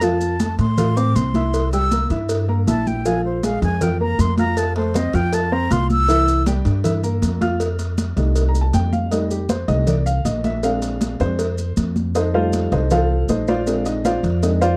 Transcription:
Already playing: F2
0.01 F3 F4 F5 A5, cowbell, high conga, maracas
0.21 high conga, maracas
0.40 A3 A4 A5, cowbell, high conga, maracas
0.59 A2 C6, cowbell, high conga, maracas
0.78 F4 F5 F6, cowbell, high conga, low conga, maracas
0.97 C4 C5 C6 D6, maracas
1.16 C2 C6, cowbell, high conga, maracas
1.34 E4 E5 E6, cowbell, high conga, maracas
1.54 cowbell, high conga, maracas
1.72 G3 G4 G5 E6, cowbell, high conga, maracas
1.91 A#3 A#4 A#5, cowbell, high conga, maracas
2.10 G2 E4 E5 E6, cowbell, maracas
2.29 cowbell, high conga, maracas
2.48 A#3 A#4 A#5, high conga
2.67 A#1 E4 E5 A5 E6, cowbell, high conga, maracas
2.87 G5, high conga, maracas
3.05 F3 F4 F5 G#5, cowbell, high conga, maracas
3.25 C5, high conga
3.43 G#3 G#4 F5 G#5, cowbell, high conga, maracas
3.62 F2 G#5, cowbell, high conga, maracas
3.81 F4 F5 G5 F6, cowbell, high conga, low conga, maracas
4.00 A#3 A#4 A#5, high conga
4.19 F2 C6, cowbell, high conga, maracas
4.38 F4 F5 A#5 F6, cowbell, high conga, maracas
4.57 A5, cowbell, high conga, maracas
4.76 A3 A4 C5 A5, cowbell, high conga
4.94 C4 C5 D#5 C6, cowbell, high conga, maracas
5.13 F2 F4 F5 G5 F6, cowbell, maracas
5.33 A5, cowbell, high conga, maracas
5.52 C4 C5 A#5 C6, high conga
5.71 C2 F4 F5 C6 F6, cowbell, high conga, maracas
5.90 E6, high conga, maracas
6.08 E3 E4 E5, cowbell, high conga, maracas
6.28 high conga, maracas
6.46 G3 G4 G5, cowbell, high conga, maracas
6.65 G2, cowbell, high conga, maracas
6.84 E4 E5 E6, cowbell, high conga, low conga, maracas
7.03 A#3 A#4 A#5, high conga, maracas
7.22 F2, cowbell, high conga, maracas
7.41 F4 F5 F6, cowbell, high conga, maracas
7.60 cowbell, high conga, maracas
7.79 cowbell, high conga, maracas
7.98 cowbell, high conga, maracas
8.16 C2 G3 A3 D#4, cowbell, maracas
8.36 cowbell, high conga, maracas
8.49 A#5
8.55 high conga, maracas
8.61 A5
8.73 F2 G5, cowbell, high conga, maracas
8.93 F5, high conga, maracas
9.11 G3 A3 D#4 D#5, cowbell, high conga, maracas
9.31 G4, high conga, maracas
9.49 C5, cowbell, high conga, maracas
9.68 C2 G3 A3 D#4 D#5, cowbell, high conga, maracas
9.87 D5, cowbell, high conga, low conga, maracas
10.06 F5, high conga, maracas
10.25 A#1 D#5, cowbell, high conga, maracas
10.44 E5, cowbell, high conga, maracas
10.63 G#3 C4 D4 F5, cowbell, high conga, maracas
10.82 cowbell, high conga, maracas
11.01 cowbell, high conga, maracas
11.20 F2 G#3 C4 D4 C5, cowbell, maracas
11.39 cowbell, high conga, maracas
11.58 high conga, maracas
11.77 F2, cowbell, high conga, maracas
11.96 high conga, maracas
12.15 D#4 A4 C5 D#5, cowbell, high conga, maracas
12.34 G3 A3 D#4 F4 A4 C5 F5, high conga
12.53 cowbell, high conga, maracas
12.72 C2 D#4 A4 C5 D#5, cowbell, high conga, maracas
12.91 F4 A4 C5 F5, cowbell, high conga, low conga, maracas
13.10 high conga
13.29 A#1 D#4 A4 C5 D#5, cowbell, high conga, maracas
13.47 F4 C5 D5 F5, cowbell, high conga, maracas
13.66 G#3 C4 D4, cowbell, high conga, maracas
13.86 D#4 D#5, cowbell, high conga, maracas
14.05 F4 C5 D5 F5, cowbell, high conga, maracas
14.23 F2, cowbell, maracas
14.43 G#3 C4 D4 D#4 D#5, cowbell, high conga, maracas
14.61 F4 C5 D5 F5, high conga, maracas

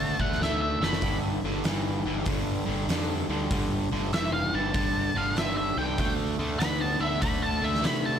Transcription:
Already playing: D3 A3 A5
0.19 D2 D3 A3 F#5, kick
0.32 snare
0.40 D2 D3 A3 E5, snare
0.62 E5
0.80 F#1 D3 A3 B5, snare
0.93 snare
1.01 G1 G2 D3, kick, open hi-hat
1.44 G1 G2 D3
1.64 G1 G2 E3, snare, open hi-hat
2.05 G1 G2 E3
2.26 G1 G2 D3, kick, open hi-hat
2.66 G1 G2 D3
2.88 F2 G2 D3, snare, open hi-hat
3.29 D2 G2 D3
3.51 G1 G2 D3, kick, open hi-hat
3.92 G1 G2 D3
4.13 F1 G2 E3 E5, snare, open hi-hat
4.33 F5
4.53 G1 G2 E3 A5
4.74 G2 D3, kick, open hi-hat
5.15 G1 G2 D3 F5
5.36 G1 G2 D3 E5, snare, open hi-hat
5.57 E5
5.77 C2 G2 D3 G5
5.98 D2 D3 A3, kick, open hi-hat
6.38 D2 D3 A3
6.59 D2 D3 B3 B5, snare, open hi-hat
6.81 A5
7.00 D2 D3 B3 E5
7.21 D2 D3 A3 B5, kick, open hi-hat
7.43 A5
7.61 D2 D3 A3 E5
7.74 snare
7.83 C3 D3 A3 B5, snare, open hi-hat
8.05 A5

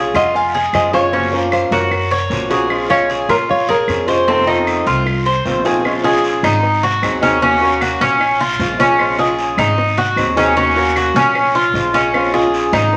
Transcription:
Already playing: G#3 C#4 F4 G#4 C#5 F5
0.14 F2 F4 D#5 F#5, short guiro, claves
0.34 F5 G#5, muted steel-string acoustic guitar stroke, long guiro
0.55 G#4
0.73 F#2 F3 G#3 C#4 F4 D#5 G#5, short guiro, claves
0.93 G#3 C#4 F4 C#5 F5, short guiro
1.12 C#3 F3 A#3 C#4 F#4, long guiro
1.32 F3 A#3 C#4
1.37 C5
1.52 C5 F5, short guiro, claves
1.71 F#2 F#4 A#4 C#5, short guiro
1.91 muted steel-string acoustic guitar stroke, long guiro, claves
2.11 C#5
2.30 A#1 F3 A#3 C#4 F#4, short guiro
2.50 F3 A#3 C#4 F#4 G#4, short guiro
2.69 F3 G#3 C#4 F4, long guiro, claves
2.90 G#3 C#4 F4 C#5 F5
3.10 G#4, short guiro
3.29 A#2 F4 A#4 C#5, short guiro, claves
3.49 C#5 F5, muted steel-string acoustic guitar stroke, long guiro
3.69 G#4 A#4 C#5
3.88 F2 F3 G#3 C#4 F4, short guiro, claves
4.07 G#3 C#4 F4 C5, short guiro
4.27 C3 D#3 A3 C4 F4 A4 C5, long guiro
4.47 D#3 A3 C4 D#4 F4
4.67 short guiro, claves
4.86 C2 F4, short guiro
5.06 muted steel-string acoustic guitar stroke, long guiro, claves
5.26 C5
5.45 A#1 D#3 A3 C4 F4, short guiro
5.64 D#3 A3 C4 F4 G#4, short guiro
5.84 F3 G#3 C#4 F4, long guiro, claves
6.04 G#3 C#4 F4 G#4
6.24 short guiro
6.43 G#1 D#4, short guiro, claves
6.63 muted steel-string acoustic guitar stroke, long guiro
6.83 F#4
7.02 D#2 F#3 C4 D#4 G#4, short guiro, claves
7.21 F#3 C4 C#4 D#4 G#4, short guiro
7.41 D#3 A#3 C#4 F#4, long guiro
7.61 A#3 C#4 F#4
7.81 F#4, short guiro, claves
8.01 A#1 C#4, short guiro
8.20 muted steel-string acoustic guitar stroke, long guiro, claves
8.41 F4
8.59 A#1 F3 G#3 C#4 F4, short guiro
8.79 G#3 C#4 F4, short guiro
8.99 F3 G#3 C#4 F4, long guiro, claves
9.18 G#3 C#4 F4 G#4
9.39 short guiro
9.57 G#1 D#4, short guiro, claves
9.78 muted steel-string acoustic guitar stroke, long guiro
9.98 F#4
10.16 D#2 F#3 C4 D#4 G#4, short guiro, claves
10.36 F#3 C4 C#4 D#4 G#4, short guiro
10.56 D#3 A#3 C#4 F#4, long guiro
10.76 A#3 C#4 F#4
10.96 F#4, short guiro, claves
11.14 A#1 C#4, short guiro
11.35 muted steel-string acoustic guitar stroke, long guiro, claves
11.55 F4
11.74 A#1 F3 G#3 C#4 F4, short guiro
11.94 G#3 C#4 F4, short guiro
12.14 F3 G#3 C#4 F4, long guiro, claves
12.33 G#3 C#4 F4 G#4
12.54 short guiro
12.72 G#1 D#4, short guiro, claves
12.93 muted steel-string acoustic guitar stroke, long guiro

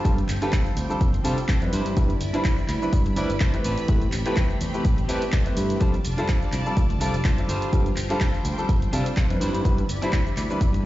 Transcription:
Already playing: C4 D4 F4 G4 C5 G5
0.04 G2 G3 C4 D4 F4 A4, kick, closed hi-hat, shaker
0.18 closed hi-hat, shaker
0.28 G1, muted clean electric guitar stroke, clap, open hi-hat, shaker
0.41 G3 C4 D4 F4 G4 A4 B4, closed hi-hat, shaker
0.52 kick, clap, closed hi-hat, shaker
0.65 muted clean electric guitar stroke, shaker
0.77 D2, open hi-hat, shaker
0.89 G3 C4 D4 F4 A4, shaker
1.01 G1, kick, closed hi-hat, shaker
1.13 muted clean electric guitar stroke, closed hi-hat, shaker
1.24 C3 G3 C4 D4 F4 G4 A4 C5, open hi-hat, shaker
1.38 closed hi-hat, shaker
1.48 D4 F4 G4 C5, kick, clap, closed hi-hat, shaker
1.62 F2 G3 C4 D4 E4 B4, closed hi-hat, shaker
1.72 G2 D4 E4 B4 C5 D5 B5, open hi-hat, shaker
1.86 G2, closed hi-hat, shaker
1.97 G2 G3 C4 D4 E4 B4, kick, closed hi-hat, shaker
2.10 closed hi-hat, shaker
2.20 G1, muted clean electric guitar stroke, open hi-hat, shaker
2.33 G3 C4 D4 E4 B4 C5 B5, closed hi-hat, shaker
2.44 kick, clap, closed hi-hat, shaker
2.57 muted clean electric guitar stroke, shaker
2.68 D2, clap, open hi-hat, shaker
2.82 G3 C4 D4 E4 B4, shaker
2.93 G2, kick, closed hi-hat, shaker
3.05 muted clean electric guitar stroke, closed hi-hat, shaker
3.16 D2 G3 C4 D4 E4 B4 D5, open hi-hat, shaker
3.30 G1, closed hi-hat, shaker
3.40 D4 E4 B4 C5, kick, clap, closed hi-hat, shaker
3.53 A3 C4 E4 G4 B4, closed hi-hat, shaker
3.64 A1 C4 G4 A4 B4, open hi-hat, shaker
3.78 closed hi-hat, shaker
3.88 A2 A3 C4 E4 G4 B4, kick, closed hi-hat, shaker
4.02 closed hi-hat, shaker
4.12 A1, muted clean electric guitar stroke, clap, open hi-hat, shaker
4.25 A3 C4 E4 G4 A4 B4, closed hi-hat, shaker
4.36 kick, clap, closed hi-hat, shaker
4.50 muted clean electric guitar stroke, shaker
4.61 E2, open hi-hat, shaker
4.74 A3 C4 E4 G4 B4, shaker
4.85 A1, kick, closed hi-hat, shaker
4.97 muted clean electric guitar stroke, closed hi-hat, shaker
5.08 A3 C4 E4 G4 A4 B4 D5, open hi-hat, shaker
5.22 closed hi-hat, shaker
5.32 C4 G4 A4 D5 E5, kick, clap, closed hi-hat, shaker
5.46 A3 C4 E4 G4 B4, closed hi-hat, shaker
5.56 G2, muted clean electric guitar stroke, open hi-hat, shaker
5.70 closed hi-hat, shaker
5.80 F2 G3 C4 D4 F4 A4 C5 D5 A5, kick, closed hi-hat, shaker
5.94 closed hi-hat, shaker
6.04 F1, muted clean electric guitar stroke, open hi-hat, shaker
6.17 G3 C4 D4 F4 A4 C5, closed hi-hat, shaker
6.28 kick, clap, closed hi-hat, shaker
6.41 muted clean electric guitar stroke, shaker
6.52 C2, clap, open hi-hat, shaker
6.66 G3 C4 D4 F4 A4, shaker
6.77 D2, kick, closed hi-hat, shaker
6.89 muted clean electric guitar stroke, closed hi-hat, shaker
7.00 C2 G3 C4 D4 F4 A4 D5, open hi-hat, shaker
7.14 F1, closed hi-hat, shaker
7.24 D4 F4 A4 C5, kick, clap, closed hi-hat, shaker
7.38 G3 C4 D4 F4 A4, closed hi-hat, shaker
7.48 G1 D4 F4 G4 C5 G5, open hi-hat, shaker
7.62 closed hi-hat, shaker
7.73 G2 G3 C4 D4 F4 A4, kick, closed hi-hat, shaker
7.86 closed hi-hat, shaker
7.96 G1, muted clean electric guitar stroke, clap, open hi-hat, shaker
8.09 G3 C4 D4 F4 G4 A4 C5, closed hi-hat, shaker
8.20 kick, clap, closed hi-hat, shaker
8.34 muted clean electric guitar stroke, shaker
8.45 D2, open hi-hat, shaker
8.58 G3 C4 D4 F4 A4, shaker
8.69 G1, kick, closed hi-hat, shaker
8.82 muted clean electric guitar stroke, closed hi-hat, shaker
8.92 C3 G3 C4 D4 F4 G4 A4, open hi-hat, shaker
9.06 closed hi-hat, shaker
9.16 D4 F4 G4 C5, kick, clap, closed hi-hat, shaker
9.30 F2 G3 C4 D4 E4 B4, closed hi-hat, shaker
9.40 G2 D4 E4 B4 C5 D5 B5, open hi-hat, shaker
9.54 G2, closed hi-hat, shaker
9.64 G2 G3 C4 D4 E4 B4, kick, closed hi-hat, shaker
9.78 closed hi-hat, shaker
9.88 G1, muted clean electric guitar stroke, open hi-hat, shaker
10.02 G3 C4 D4 E4 B4 C5 B5, closed hi-hat, shaker
10.12 kick, clap, closed hi-hat, shaker
10.26 muted clean electric guitar stroke, shaker
10.37 D2, clap, open hi-hat, shaker
10.50 G3 C4 D4 E4 B4, shaker
10.61 G2, kick, closed hi-hat, shaker
10.73 muted clean electric guitar stroke, closed hi-hat, shaker

